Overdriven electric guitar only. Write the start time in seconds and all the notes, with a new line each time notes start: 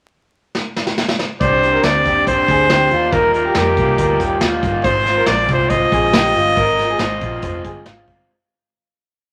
1.41 C3 D#3 C4 D4 G4
1.62 C4 D4 G4
1.84 C3 D#3 C4 D4 G4
2.06 C4 D4 G4
2.27 D#3 C4 D4 G4
2.69 C3 D#3 C4 D4 G4
2.91 A#3 D#4 F4
3.12 D#3 G3 A#3 D#4 F4
3.33 A#3 D#4 F4
3.54 D#3 G3 A#3 D#4 F4
3.77 A#3 D#4 F4
3.97 G3 A#3 D#4 F4
4.41 D#3 G3 A#3 D#4 F4
4.62 A#3 D#4 F4
4.85 G#2 D#3 F3 G#3 C4 F4
5.06 F3 G#3 C4 F4
5.27 G#2 D#3 F3 G#3 C4 F4
5.50 F3 G#3 C4 F4
5.71 F3 G#3 C4 F4
6.15 G#2 D#3 F3 G#3 C4 F4
6.36 F3 G#3 C4 F4
6.57 G#2 D#3 F3 G#3 C4 F4
6.79 F3 G#3 C4 F4
7.00 G#2 D#3 F3 G#3 C4 F4
7.22 F3 G#3 C4 F4
7.42 F3 G#3 C4 F4
7.86 G#2 D#3 F3 G#3 C4 F4
8.07 F3 G#3 C4 F4